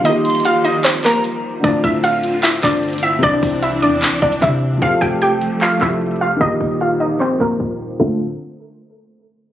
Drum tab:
CC |--------------------------------|--------------------------------|--------------------------------|--------------------------------|
HH |x---xxxxx---o---x---x---x-------|x---x---x---x---x---x---xxxx----|x---o---x---x---x---x-x-x-------|x---x---x---x---x---x---xxxx----|
CP |----------------x---x-----------|----------------x---x-----------|----------------x-------x-------|----------------x---x-----------|
BD |--------------------------------|o---o---------------o-----------|o---o---------------o---o-------|o---o---------------o-----------|

CC |--------------------------------|x-------------------------------|
HH |x---o---x---x---x---x---x-------|--------------------------------|
CP |----------------x---x-----------|--------------------------------|
BD |o---o---------------o---o-------|o-------------------------------|